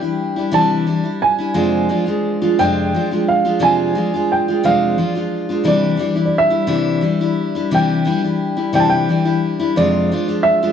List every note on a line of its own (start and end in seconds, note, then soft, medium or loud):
0.00 0.37 G3 soft
0.00 0.36 D4 soft
0.00 0.35 E4 soft
0.00 0.56 G5 medium
0.36 0.51 G3 soft
0.36 0.52 D4 soft
0.36 0.52 E4 soft
0.51 0.86 C3 medium
0.51 0.85 E3 medium
0.51 0.86 G3 medium
0.51 0.86 D4 medium
0.51 0.87 E4 medium
0.51 1.24 A5 medium
0.87 1.04 E3 soft
0.87 1.04 G3 soft
0.87 1.04 D4 soft
0.87 1.02 E4 soft
1.03 1.39 G3 soft
1.03 1.38 D4 soft
1.03 1.37 E4 soft
1.22 2.62 G#5 medium
1.38 1.54 G3 soft
1.38 1.53 D4 soft
1.38 1.54 E4 soft
1.54 1.89 F2 medium
1.54 1.89 C3 medium
1.54 1.88 F3 medium
1.54 1.88 G#3 medium
1.54 1.89 D4 medium
1.54 1.89 F4 medium
1.89 2.06 F3 medium
1.89 2.06 G#3 soft
1.89 2.06 D4 medium
1.89 2.05 F4 medium
2.06 2.42 F3 soft
2.06 2.41 G#3 soft
2.06 2.40 D4 soft
2.06 2.40 F4 soft
2.42 2.58 F3 soft
2.42 2.58 G#3 soft
2.42 2.58 D4 soft
2.42 2.58 F4 medium
2.59 2.92 F2 medium
2.59 2.93 C3 medium
2.59 2.93 F3 medium
2.59 2.93 G#3 medium
2.59 2.93 D4 medium
2.59 2.94 F4 medium
2.59 3.29 G5 medium
2.94 3.10 F3 soft
2.94 3.10 G#3 soft
2.94 3.10 D4 soft
2.94 3.10 F4 soft
3.11 3.45 F3 soft
3.11 3.45 G#3 soft
3.11 3.44 D4 soft
3.11 3.44 F4 soft
3.28 3.62 F5 medium
3.45 3.59 F3 soft
3.45 3.60 G#3 soft
3.45 3.59 D4 soft
3.45 3.60 F4 soft
3.59 3.94 F2 medium
3.59 3.94 C3 medium
3.59 3.94 F3 medium
3.59 3.94 G#3 medium
3.59 3.95 D4 medium
3.59 3.95 F4 medium
3.59 4.32 G#5 medium
3.95 4.12 F3 medium
3.95 4.12 G#3 medium
3.95 4.13 D4 medium
3.95 4.13 F4 medium
4.14 4.49 F3 soft
4.14 4.48 G#3 soft
4.14 4.47 D4 soft
4.14 4.47 F4 soft
4.32 4.66 G5 medium
4.48 4.63 F3 soft
4.48 4.63 G#3 soft
4.48 4.64 D4 soft
4.48 4.64 F4 soft
4.63 4.97 F2 medium
4.63 4.98 C3 medium
4.63 4.97 F3 medium
4.63 4.97 G#3 medium
4.63 4.97 D4 medium
4.63 4.98 F4 medium
4.63 5.37 F5 medium
4.98 5.15 F3 soft
4.98 5.15 G#3 soft
4.98 5.15 D4 soft
4.98 5.14 F4 soft
5.15 5.50 F3 soft
5.15 5.50 G#3 soft
5.15 5.49 D4 soft
5.15 5.48 F4 soft
5.49 5.64 F3 soft
5.49 5.64 G#3 soft
5.49 5.64 D4 soft
5.49 5.65 F4 soft
5.64 5.99 C3 medium
5.64 5.96 E3 medium
5.64 5.98 G3 medium
5.64 5.98 D4 medium
5.64 5.99 E4 medium
5.68 6.24 D5 medium
5.97 6.16 E3 soft
5.97 6.16 G3 medium
5.97 6.15 D4 medium
5.97 6.14 E4 medium
6.16 6.50 G3 soft
6.16 6.50 D4 soft
6.16 6.49 E4 soft
6.26 6.33 D5 medium
6.38 7.77 E5 medium
6.50 6.66 G3 soft
6.50 6.67 D4 soft
6.50 6.67 E4 soft
6.67 7.02 C3 medium
6.67 7.00 E3 medium
6.67 7.01 G3 medium
6.67 7.01 D4 medium
6.67 7.02 E4 medium
7.01 7.19 E3 soft
7.01 7.20 G3 soft
7.01 7.20 D4 soft
7.01 7.20 E4 soft
7.21 7.55 G3 soft
7.21 7.55 D4 soft
7.21 7.54 E4 soft
7.55 7.70 G3 soft
7.55 7.71 D4 soft
7.55 7.72 E4 soft
7.71 8.05 C3 medium
7.71 8.04 E3 medium
7.71 8.04 G3 medium
7.71 8.05 D4 medium
7.71 8.05 E4 medium
7.71 8.74 G5 medium
8.05 8.22 E3 medium
8.05 8.22 G3 medium
8.05 8.23 D4 medium
8.05 8.21 E4 medium
8.22 8.57 G3 soft
8.22 8.56 D4 soft
8.22 8.55 E4 soft
8.57 8.73 G3 soft
8.57 8.73 D4 soft
8.57 8.74 E4 soft
8.73 9.07 C3 medium
8.73 9.08 E3 medium
8.73 9.08 G3 medium
8.73 9.08 D4 medium
8.73 9.08 E4 medium
8.73 8.81 G5 medium
8.80 8.87 A5 medium
8.90 9.47 G5 medium
9.09 9.26 E3 soft
9.09 9.26 G3 soft
9.09 9.24 D4 soft
9.09 9.24 E4 medium
9.25 9.60 G3 soft
9.25 9.59 D4 soft
9.25 9.58 E4 soft
9.60 9.77 G3 soft
9.60 9.76 D4 soft
9.60 9.76 E4 medium
9.76 10.10 F2 medium
9.76 10.11 C3 medium
9.76 10.10 F3 medium
9.76 10.11 G#3 medium
9.76 10.11 D4 medium
9.76 10.11 F4 medium
9.76 10.47 D5 medium
10.12 10.28 F3 medium
10.12 10.28 G#3 medium
10.12 10.28 D4 medium
10.12 10.27 F4 medium
10.28 10.63 F3 soft
10.28 10.62 G#3 soft
10.28 10.62 D4 soft
10.28 10.61 F4 soft
10.43 10.72 E5 medium
10.62 10.72 F3 soft
10.62 10.72 G#3 soft
10.62 10.72 D4 medium
10.62 10.72 F4 medium